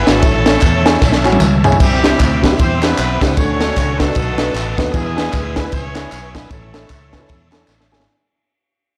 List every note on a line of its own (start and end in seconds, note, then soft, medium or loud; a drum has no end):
0.00 0.19 G#4 medium
0.00 0.21 B4 medium
0.00 1.77 E5 medium
0.00 0.22 G#5 medium
0.00 1.77 E6 medium
0.06 0.21 G#1 medium
0.06 1.41 A3 medium
0.06 0.18 B3 medium
0.06 1.37 C#4 medium
0.06 0.18 E4 medium
0.06 1.37 E4 medium
0.06 0.18 F#4 medium
0.06 1.41 A4 loud
0.06 snare loud
0.06 ride bell medium
0.06 tambourine medium
0.22 0.56 A1 loud
0.22 0.81 A2 medium
0.22 1.78 C#5 medium
0.22 1.78 A5 medium
0.22 kick loud
0.22 ride bell medium
0.22 tambourine medium
0.46 0.57 C#4 medium
0.46 0.57 E4 medium
0.46 0.57 A4 medium
0.46 snare loud
0.46 ride bell medium
0.46 tambourine medium
0.61 0.96 E2 medium
0.61 kick medium
0.61 clap medium
0.61 ride bell medium
0.61 tambourine medium
0.85 0.96 C#4 medium
0.85 0.96 E4 medium
0.85 0.96 G#4 loud
0.85 snare loud
0.85 ride bell medium
0.85 tambourine medium
1.02 1.26 B1 medium
1.02 kick loud
1.02 snare medium
1.02 tambourine medium
1.12 snare medium
1.25 1.39 A1 medium
1.25 1.36 C#4 medium
1.25 1.36 E4 medium
1.25 1.36 F#4 medium
1.25 clap loud
1.25 tambourine medium
1.32 high tom medium
1.40 1.74 C#2 loud
1.40 clap loud
1.40 mid tom medium
1.40 tambourine loud
1.64 1.75 C#4 medium
1.64 1.75 E4 medium
1.64 1.75 G#4 loud
1.64 floor tom loud
1.64 tambourine medium
1.72 floor tom medium
1.80 2.13 C2 loud
1.80 2.39 C3 medium
1.80 2.40 G3 medium
1.80 3.35 C4 medium
1.80 2.55 C4 medium
1.80 2.55 E4 medium
1.80 2.40 G4 loud
1.80 3.35 E5 medium
1.80 3.35 G5 medium
1.80 3.35 E6 medium
1.80 kick loud
1.80 crash loud
1.80 tambourine medium
2.03 2.14 C4 medium
2.03 2.14 E4 medium
2.03 2.14 G4 medium
2.03 snare loud
2.03 ride bell medium
2.03 tambourine medium
2.20 2.53 D2 loud
2.20 kick medium
2.20 clap medium
2.20 ride bell medium
2.20 tambourine medium
2.42 2.51 B3 medium
2.42 2.48 C4 medium
2.42 2.48 E4 medium
2.42 2.48 G4 medium
2.42 2.51 B4 loud
2.42 kick medium
2.42 snare loud
2.42 ride bell medium
2.42 tambourine medium
2.51 2.63 C4 medium
2.51 2.63 E4 medium
2.51 2.64 G4 medium
2.58 2.92 E2 loud
2.58 2.81 C4 loud
2.58 2.83 E4 medium
2.58 2.82 G4 medium
2.58 2.81 C5 loud
2.58 kick loud
2.58 ride bell medium
2.58 tambourine medium
2.82 3.21 B3 loud
2.82 2.93 C4 medium
2.82 2.93 E4 medium
2.82 3.34 E4 medium
2.82 2.93 G4 medium
2.82 3.34 G4 medium
2.82 3.21 B4 loud
2.82 snare loud
2.82 clap loud
2.82 ride bell medium
2.82 tambourine medium
2.98 3.18 B1 loud
2.98 clap loud
2.98 ride bell medium
2.98 tambourine loud
3.21 3.35 C#2 loud
3.21 3.36 B3 medium
3.21 3.32 C4 medium
3.21 3.33 E4 medium
3.21 3.33 G4 medium
3.21 3.36 B4 loud
3.21 kick loud
3.21 snare loud
3.21 ride bell medium
3.21 tambourine medium
3.37 3.70 D2 loud
3.37 3.96 D3 medium
3.37 4.00 C#4 loud
3.37 4.15 D4 medium
3.37 3.99 F#4 medium
3.37 4.15 A4 medium
3.37 3.99 A4 medium
3.37 4.00 C#5 loud
3.37 4.92 F#5 medium
3.37 kick loud
3.37 ride bell medium
3.37 tambourine medium
3.61 3.71 D4 medium
3.61 3.72 F#4 medium
3.61 3.72 A4 medium
3.61 snare loud
3.61 ride bell medium
3.61 tambourine medium
3.76 4.10 C#2 loud
3.76 kick loud
3.76 clap medium
3.76 ride bell medium
3.76 tambourine medium
4.00 4.78 A3 loud
4.00 4.05 D4 medium
4.00 4.74 D#4 medium
4.00 4.05 F#4 medium
4.00 4.74 F#4 medium
4.00 4.78 A4 loud
4.00 4.05 B4 medium
4.00 kick medium
4.00 snare loud
4.00 ride bell medium
4.00 tambourine medium
4.07 4.15 D4 medium
4.07 4.15 F#4 medium
4.07 4.15 A4 medium
4.15 4.49 B1 loud
4.15 4.74 B2 medium
4.15 6.49 B4 medium
4.15 4.93 A5 medium
4.15 4.94 D#6 medium
4.15 kick loud
4.15 ride bell medium
4.15 tambourine medium
4.38 4.49 A3 medium
4.38 4.50 B3 medium
4.38 4.50 D#4 medium
4.38 4.50 F#4 medium
4.38 4.49 B4 medium
4.38 snare loud
4.38 clap medium
4.38 ride bell medium
4.38 tambourine medium
4.54 4.74 A1 medium
4.54 clap loud
4.54 ride bell medium
4.54 tambourine loud
4.78 4.91 D#2 medium
4.78 4.89 A3 medium
4.78 4.89 B3 medium
4.78 4.89 D#4 medium
4.78 4.89 F#4 medium
4.78 4.89 B4 loud
4.78 kick loud
4.78 snare loud
4.78 ride bell medium
4.78 tambourine medium
4.93 5.27 E2 loud
4.93 5.52 E3 medium
4.93 5.53 G#3 medium
4.93 5.56 B3 medium
4.93 5.69 E4 medium
4.93 5.53 G#4 loud
4.93 8.06 E5 medium
4.93 6.50 G#5 medium
4.93 8.05 E6 medium
4.93 kick loud
4.93 ride bell medium
4.93 tambourine medium
5.16 5.28 B3 medium
5.16 5.28 E4 medium
5.16 5.28 G#4 loud
5.16 snare loud
5.16 ride bell medium
5.16 tambourine soft
5.33 5.67 D2 loud
5.33 kick loud
5.33 clap medium
5.33 ride bell medium
5.33 tambourine medium
5.56 5.62 B3 medium
5.56 5.72 B3 medium
5.56 5.62 E4 medium
5.56 5.62 G#4 medium
5.56 5.72 B4 medium
5.56 kick medium
5.56 snare loud
5.56 ride bell medium
5.56 tambourine medium
5.64 5.77 B3 medium
5.64 5.77 E4 medium
5.64 5.77 B4 medium
5.72 6.06 C#2 loud
5.72 6.31 C#4 loud
5.72 6.47 E4 medium
5.72 6.47 G#4 medium
5.72 6.31 C#5 loud
5.72 kick loud
5.72 ride bell medium
5.72 tambourine medium
5.95 6.07 B3 medium
5.95 6.07 E4 medium
5.95 6.07 G#4 medium
5.95 snare loud
5.95 clap loud
5.95 ride bell medium
5.95 tambourine medium
6.12 6.45 B1 loud
6.12 clap loud
6.12 ride bell medium
6.12 tambourine loud
6.34 6.45 B3 medium
6.34 6.50 B3 medium
6.34 6.46 E4 medium
6.34 6.50 B4 medium
6.34 6.46 B4 medium
6.34 kick loud
6.34 snare loud
6.34 ride bell medium
6.34 tambourine medium
6.50 6.84 A1 loud
6.50 7.09 A2 medium
6.50 7.68 A3 medium
6.50 7.65 C#4 medium
6.50 7.65 E4 medium
6.50 7.68 A4 loud
6.50 8.06 C#5 medium
6.50 8.06 A5 medium
6.50 kick loud
6.50 ride bell medium
6.50 tambourine medium
6.73 6.85 C#4 medium
6.73 6.85 E4 medium
6.73 6.85 A4 medium
6.73 snare loud
6.73 ride bell medium
6.73 tambourine medium
6.89 7.23 C#2 loud
6.89 kick medium
6.89 clap medium
6.89 ride bell medium
6.89 tambourine medium
7.13 7.18 C#4 medium
7.13 7.18 E4 medium
7.13 7.19 B4 loud
7.13 kick medium
7.13 snare loud
7.13 ride bell medium
7.13 tambourine medium
7.19 7.33 C#4 medium
7.19 7.33 E4 medium
7.19 7.33 A4 medium
7.28 7.63 E2 medium
7.28 kick loud
7.28 ride bell medium
7.28 tambourine medium
7.52 7.63 C#4 medium
7.52 7.63 E4 medium
7.52 7.64 A4 loud
7.52 snare loud
7.52 clap medium
7.52 ride bell medium
7.52 tambourine medium
7.68 7.88 A1 medium
7.68 snare medium
7.68 clap loud
7.68 tambourine loud
7.81 snare medium
7.91 8.03 C#4 medium
7.91 8.03 E4 medium
7.91 8.03 G#4 loud
7.91 snare loud
7.91 tambourine medium
8.00 snare medium